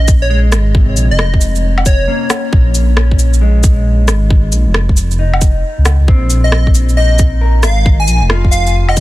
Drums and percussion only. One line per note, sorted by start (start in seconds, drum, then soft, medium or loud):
0.08 kick loud
0.08 cabasa medium
0.08 shaker medium
0.52 cross-stick loud
0.52 cabasa medium
0.52 shaker medium
0.75 kick loud
0.97 cabasa medium
0.97 shaker medium
1.19 cross-stick loud
1.34 kick medium
1.41 cabasa medium
1.41 shaker medium
1.55 shaker soft
1.78 low woodblock medium
1.86 kick loud
1.86 cabasa medium
1.86 shaker medium
2.30 cross-stick loud
2.30 cabasa medium
2.30 low woodblock medium
2.30 shaker medium
2.53 kick loud
2.75 cabasa medium
2.75 shaker medium
2.97 cross-stick loud
3.11 kick medium
3.19 cabasa medium
3.19 shaker medium
3.34 shaker soft
3.63 kick loud
3.63 cabasa medium
3.63 shaker medium
4.08 cross-stick loud
4.08 cabasa medium
4.08 shaker medium
4.30 kick loud
4.52 cabasa medium
4.52 shaker medium
4.74 cross-stick loud
4.89 kick medium
4.97 cabasa medium
4.97 shaker medium
5.11 shaker soft
5.34 low woodblock medium
5.41 kick loud
5.41 cabasa medium
5.41 shaker medium
5.85 cross-stick loud
5.85 cabasa medium
5.85 low woodblock medium
5.85 shaker medium
6.08 kick loud
6.30 cabasa medium
6.30 shaker medium
6.52 cross-stick loud
6.67 kick medium
6.74 cabasa medium
6.74 shaker medium
6.89 shaker soft
7.19 kick loud
7.19 cabasa medium
7.19 shaker medium
7.63 cross-stick loud
7.63 cabasa medium
7.63 shaker medium
7.86 kick loud
8.08 cabasa medium
8.08 shaker medium
8.30 cross-stick loud
8.45 kick medium
8.52 cabasa medium
8.52 shaker medium
8.67 shaker soft
8.89 low woodblock medium
8.97 kick loud
8.97 cabasa medium
8.97 shaker medium